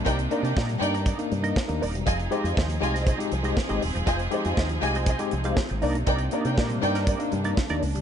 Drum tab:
HH |xxxx-xxxxxxx-xox|xxxx-xxxxxxx-xox|xxxx-xxxxxxx-xox|xxxx-xxxxxxx-xox|
SD |----o-------o---|----o--o----o---|----o-------o---|----o--o----o---|
BD |o---o---o---o---|o---o---o---o---|o---o---o---o---|o---o---o---o---|